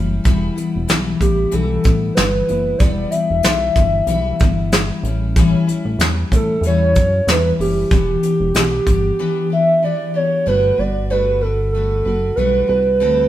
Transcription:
Already playing: analog synth bass F#1, steel-string acoustic guitar G3 C#4 E4
0.24 analog synth bass E1, steel-string acoustic guitar E3 G3 B3 E4, kick, closed hi-hat
0.56 steel-string acoustic guitar G3 B3 E4, closed hi-hat
0.75 analog synth bass E1
0.88 analog synth bass B1, steel-string acoustic guitar E3 G3 B3 E4, snare, closed hi-hat
1.19 analog synth bass A1, steel-string acoustic guitar G3 B3 E4, soft synth lead G4, kick, closed hi-hat
1.51 analog synth bass B1, steel-string acoustic guitar E3 G3 B3 E4, soft synth lead A4, closed hi-hat
1.84 analog synth bass A1, steel-string acoustic guitar G3 B3 E4, kick, closed hi-hat
2.15 analog synth bass G1, steel-string acoustic guitar E3 G3, soft synth lead B4, snare, closed hi-hat
2.48 analog synth bass F#1, steel-string acoustic guitar G3 B3 E4, closed hi-hat
2.78 analog synth bass E1, steel-string acoustic guitar E3 G3 B3 E4, soft synth lead D5, kick, closed hi-hat
3.11 steel-string acoustic guitar G3 B3 E4, soft synth lead E5, closed hi-hat
3.30 analog synth bass E1
3.43 analog synth bass B1, steel-string acoustic guitar E3 G3 B3 E4, snare, closed hi-hat
3.76 analog synth bass G1, steel-string acoustic guitar G3 B3 E4, kick, snare, closed hi-hat
4.07 analog synth bass B1, steel-string acoustic guitar E3 G3 B3 E4, closed hi-hat
4.39 analog synth bass G1, steel-string acoustic guitar B3 E4, kick, closed hi-hat
4.44 steel-string acoustic guitar G3
4.72 steel-string acoustic guitar E3 G3 B3, snare, closed hi-hat
4.76 steel-string acoustic guitar E4
5.03 analog synth bass A1, steel-string acoustic guitar C#4 E4, closed hi-hat
5.07 steel-string acoustic guitar G3
5.36 steel-string acoustic guitar A2 E3 G3 C#4 E4, kick, closed hi-hat
5.67 steel-string acoustic guitar G3 C#4 E4, closed hi-hat
5.85 analog synth bass A1
5.99 analog synth bass E2, steel-string acoustic guitar E3 G3 C#4, snare, closed hi-hat
6.03 steel-string acoustic guitar E4
6.32 analog synth bass A2, steel-string acoustic guitar G3 C#4 E4, soft synth lead A4, kick, closed hi-hat
6.61 analog synth bass E2, steel-string acoustic guitar A2, closed hi-hat
6.65 steel-string acoustic guitar E3 G3 C#4 E4, soft synth lead C#5
6.95 analog synth bass F#2, steel-string acoustic guitar C#4 E4, kick, closed hi-hat
7.27 analog synth bass E2, steel-string acoustic guitar E3 G3 C#4 E4, soft synth lead B4, snare, closed hi-hat
7.58 analog synth bass F#1, steel-string acoustic guitar G3 C#4 E4, soft synth lead G4, open hi-hat
7.91 analog synth bass E1, steel-string acoustic guitar E3 B3 D4 G4, kick, closed hi-hat
8.23 steel-string acoustic guitar B3 D4 G4, closed hi-hat
8.40 analog synth bass E1
8.54 analog synth bass B1, steel-string acoustic guitar E3 B3 D4 G4, snare, closed hi-hat
8.86 analog synth bass G1, steel-string acoustic guitar B3 D4 G4, kick, closed hi-hat
9.19 steel-string acoustic guitar E3 B3 D4 G4
9.50 steel-string acoustic guitar B3 D4 G4, soft synth lead E5
9.82 steel-string acoustic guitar E3 B3 D4 G4, soft synth lead D5
10.14 steel-string acoustic guitar B3 D4 G4, soft synth lead C#5
10.46 analog synth bass G1, steel-string acoustic guitar G3 A3 D4 F#4 B4, soft synth lead B4
10.78 analog synth bass G1, steel-string acoustic guitar D4 F#4 B4, soft synth lead D5
11.10 steel-string acoustic guitar G3 A3 D4 F#4 B4, soft synth lead B4
11.41 steel-string acoustic guitar D4 F#4 B4, soft synth lead A4
11.72 steel-string acoustic guitar A3 D4, soft synth lead A4
11.77 steel-string acoustic guitar F#4 B4
12.05 analog synth bass F#1, steel-string acoustic guitar D4 F#4 B4
12.36 analog synth bass B1, steel-string acoustic guitar G3 A3 D4 F#4 B4, soft synth lead B4
12.68 analog synth bass C2, steel-string acoustic guitar D4 F#4 B4, soft synth lead B4
13.00 analog synth bass D2, steel-string acoustic guitar D3 G3 C4 G4 A4

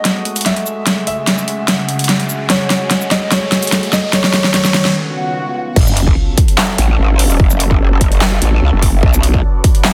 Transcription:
Already playing: ambient pad G#3 A3 F#4, grand piano D#5, riser
0.05 snare, closed hi-hat
0.25 closed hi-hat
0.36 closed hi-hat, shaker
0.41 closed hi-hat
0.46 grand piano E5, snare, closed hi-hat
0.56 closed hi-hat
0.66 shaker
0.86 ambient pad C#3 F#4, snare, closed hi-hat
1.07 grand piano E5, closed hi-hat
1.27 snare, closed hi-hat
1.38 shaker
1.48 closed hi-hat
1.68 snare, closed hi-hat
1.89 closed hi-hat
1.99 closed hi-hat
2.04 closed hi-hat
2.09 snare, closed hi-hat
2.20 closed hi-hat
2.29 shaker
2.50 ambient pad G#3 A3, grand piano C#5, snare, closed hi-hat
2.70 snare, closed hi-hat
2.91 snare, closed hi-hat
3.01 shaker
3.11 grand piano D#5, snare, closed hi-hat
3.31 grand piano C#5, snare, closed hi-hat
3.52 snare, closed hi-hat
3.63 closed hi-hat, shaker
3.67 closed hi-hat
3.72 snare, closed hi-hat
3.83 closed hi-hat
3.93 grand piano D#5, snare, shaker
4.13 ambient pad D#3 B3 C#4, grand piano C#5, snare, closed hi-hat
4.24 snare
4.33 snare, closed hi-hat
4.44 snare
4.54 grand piano C#5, snare, closed hi-hat
4.65 snare, shaker
4.74 snare, closed hi-hat
4.85 snare
4.95 ambient pad C#3 F4, swell
5.76 wobble bass F#1, ambient pad F#3 C#4 A4, kick, crash, sub drop
5.87 shaker
5.97 closed hi-hat
6.07 kick
6.38 kick, closed hi-hat
6.48 closed hi-hat
6.58 snare, clap
6.78 wobble bass A1, closed hi-hat
6.99 wobble bass G#1
7.19 open hi-hat
7.30 shaker
7.40 wobble bass F#1, kick
7.50 shaker
7.60 closed hi-hat
7.71 kick
7.80 wobble bass F#1
8.01 kick, closed hi-hat
8.12 closed hi-hat
8.21 snare, clap
8.42 wobble bass A1, closed hi-hat
8.62 wobble bass C#2
8.73 wobble bass F#1
8.82 kick, open hi-hat
9.03 wobble bass B1, ambient pad B3 F#4 D5, kick
9.14 shaker
9.23 closed hi-hat
9.34 kick
9.64 kick, closed hi-hat
9.75 closed hi-hat
9.84 snare, clap

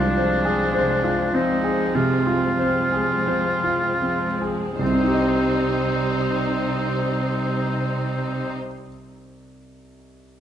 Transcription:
Already playing: grand piano C2 F4, cello section C3, viola section F3 G#3, violin section C4, oboe D4
0.17 viola section F3 G#3, violin section C4, grand piano C5
0.45 grand piano G#4
0.74 cello section C3, grand piano C5
1.04 grand piano F4
1.34 viola section F3 G#3, grand piano C4, violin section C4, oboe D#4
1.64 grand piano G#4
1.95 grand piano C3, cello section C3, oboe F4
2.27 grand piano F4
2.59 viola section F3 G#3, violin section C4, grand piano C5
2.92 grand piano G#4
3.27 cello section C3, grand piano C5
3.64 grand piano F4
4.02 viola section F3 G#3, grand piano C4, violin section C4
4.42 grand piano G#4
4.79 grand piano C2, cello section C3, viola section G3 D#4, oboe C4, violin section D#4 C5
4.87 grand piano C3
4.94 grand piano C4
5.00 grand piano D#4
5.07 grand piano G4
5.14 grand piano D#5

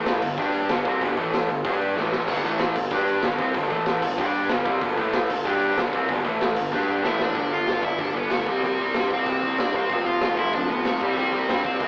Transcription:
Already playing: picked electric bass A1, overdriven electric guitar A2 E3 A3
0.06 snare, open hi-hat
0.22 picked electric bass G1, overdriven electric guitar G2 D3, crash
0.38 picked electric bass G2, overdriven electric guitar G3 D4 G4, kick
0.53 open hi-hat
0.69 picked electric bass G1, overdriven electric guitar G2 D3 G3, snare, open hi-hat
0.85 picked electric bass C2, overdriven electric guitar C3 G3 C4, kick, open hi-hat
1.01 picked electric bass G1, overdriven electric guitar G2 D3 G3, kick, open hi-hat
1.17 picked electric bass A1, overdriven electric guitar A2 E3 A3, kick, open hi-hat
1.33 snare, open hi-hat
1.49 picked electric bass G1, overdriven electric guitar G2 D3, open hi-hat
1.65 picked electric bass G2, overdriven electric guitar G3 D4 G4, kick, open hi-hat
1.81 open hi-hat
1.95 picked electric bass A1, overdriven electric guitar A2 E3 A3, snare
2.12 snare
2.28 picked electric bass G1, overdriven electric guitar G2 D3 G3, kick, splash, crash
2.44 picked electric bass A1, overdriven electric guitar A2 E3 A3, open hi-hat
2.59 snare, open hi-hat
2.75 picked electric bass G1, overdriven electric guitar G2 D3, crash
2.91 picked electric bass G2, overdriven electric guitar G3 D4 G4, kick
3.07 open hi-hat
3.22 picked electric bass G1, overdriven electric guitar G2 D3 G3, snare, open hi-hat
3.39 picked electric bass C2, overdriven electric guitar C3 G3 C4, kick, open hi-hat
3.54 picked electric bass G1, overdriven electric guitar G2 D3 G3, kick, open hi-hat
3.70 picked electric bass A1, overdriven electric guitar A2 E3 A3, kick, open hi-hat
3.86 snare, open hi-hat
4.02 picked electric bass G1, overdriven electric guitar G2 D3, crash
4.18 picked electric bass G2, overdriven electric guitar G3 D4 G4, kick
4.34 open hi-hat
4.49 picked electric bass G1, overdriven electric guitar G2 D3 G3, snare, open hi-hat
4.65 picked electric bass C2, overdriven electric guitar C3 G3 C4, kick, open hi-hat
4.81 picked electric bass G1, overdriven electric guitar G2 D3 G3, kick, open hi-hat
4.97 picked electric bass A1, overdriven electric guitar A2 E3 A3, kick, open hi-hat
5.13 snare, open hi-hat
5.29 picked electric bass G1, overdriven electric guitar G2 D3, crash
5.45 picked electric bass G2, overdriven electric guitar G3 D4 G4, kick
5.61 open hi-hat
5.77 picked electric bass G1, overdriven electric guitar G2 D3 G3, snare, open hi-hat
5.93 picked electric bass C2, overdriven electric guitar C3 G3 C4, kick, open hi-hat
6.09 picked electric bass G1, overdriven electric guitar G2 D3 G3, kick, open hi-hat
6.25 picked electric bass A1, overdriven electric guitar A2 E3 A3, kick, open hi-hat
6.41 snare, open hi-hat
6.56 picked electric bass G1, overdriven electric guitar G2 D3, crash
6.72 picked electric bass G2, overdriven electric guitar G3 D4 G4, snare
7.04 picked electric bass A1, overdriven electric guitar A2 E3 A3, lead electric guitar E4 E5, snare
7.19 lead electric guitar D4 D5, snare
7.35 picked electric bass G1, overdriven electric guitar G2 D3 G3, kick, open hi-hat
7.52 overdriven electric guitar G2 D3 G3, lead electric guitar F4 F5
7.67 picked electric bass G1, overdriven electric guitar G2 D3 G3, snare, open hi-hat
7.82 picked electric bass G1, overdriven electric guitar G2 D3 G3, lead electric guitar E4 E5, kick
7.98 picked electric bass G1, overdriven electric guitar G2 D3 G3, lead electric guitar D4 D5, kick, open hi-hat
8.14 picked electric bass G1, overdriven electric guitar G2 D3 G3, lead electric guitar B3 B4
8.30 picked electric bass G1, overdriven electric guitar G2 D3 G3, lead electric guitar A3 A4, snare, open hi-hat
8.46 picked electric bass C2, overdriven electric guitar C3 G3 C4, lead electric guitar G3 G4, kick
8.63 picked electric bass C2, overdriven electric guitar C3 G3 C4, lead electric guitar G4, open hi-hat
8.67 lead electric guitar G3
8.79 picked electric bass C2, overdriven electric guitar C3 G3 C4
8.94 picked electric bass G2, overdriven electric guitar C3 G3 C4, snare, open hi-hat
9.10 picked electric bass C2, overdriven electric guitar C3 G3 C4, lead electric guitar C4 C5, kick
9.26 picked electric bass C2, overdriven electric guitar C3 G3 C4, kick, open hi-hat
9.43 picked electric bass C2, overdriven electric guitar C3 G3 C4
9.58 picked electric bass C2, overdriven electric guitar C3 G3 C4, lead electric guitar D4 D5, snare, open hi-hat
9.74 picked electric bass C2, overdriven electric guitar C3 G3 C4, lead electric guitar C4 C5, kick
9.89 picked electric bass F1, overdriven electric guitar F2 C3 F3, kick, open hi-hat
10.06 overdriven electric guitar F2 C3 F3, lead electric guitar F4 F5
10.21 picked electric bass F1, overdriven electric guitar F2 C3 F3, snare, open hi-hat
10.37 picked electric bass F1, overdriven electric guitar F2 C3 F3, lead electric guitar E4 E5, kick
10.53 picked electric bass F1, overdriven electric guitar F2 C3 F3, lead electric guitar D4 D5, kick, open hi-hat
10.69 picked electric bass F1, overdriven electric guitar F2 C3 F3, lead electric guitar B3 B4
10.85 picked electric bass B1, overdriven electric guitar F2 C3 F3, lead electric guitar A3 A4, snare, open hi-hat
11.01 picked electric bass C2, overdriven electric guitar C3 G3 C4, lead electric guitar G3 G4, kick
11.17 picked electric bass C2, overdriven electric guitar C3 G3 C4, lead electric guitar G3 G4, open hi-hat
11.33 picked electric bass C2, overdriven electric guitar C3 G3 C4
11.49 picked electric bass G2, overdriven electric guitar C3 G3 C4, snare, open hi-hat
11.64 picked electric bass C2, overdriven electric guitar C3 G3 C4, lead electric guitar C4 C5, kick
11.80 picked electric bass C2, overdriven electric guitar C3 G3 C4, kick, open hi-hat

